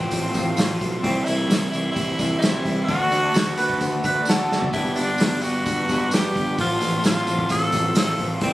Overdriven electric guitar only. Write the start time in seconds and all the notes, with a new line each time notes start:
Already playing: A2 F3 A3 C4 F4
0.57 A2 F3 A3 C4 F4
1.03 C3 E3 G3 C4 E4
1.73 C3 E3 G3 C4 E4
2.42 C3 E3 G3 C4 E4
2.88 D3 A3 D4 F#4
3.56 D3 A3 D4 F#4
4.26 D3 A3 D4 F#4
4.72 G2 D3 G3 B3 D4 G4
5.42 G2 D3 G3 B3 D4 G4
6.12 G2 D3 G3 B3 D4 G4
6.57 A2 F3 A3 C4 F4
7.27 A2 F3 A3 C4 F4
7.96 A2 F3 A3 C4 F4
8.41 C3 E3 G3 C4 E4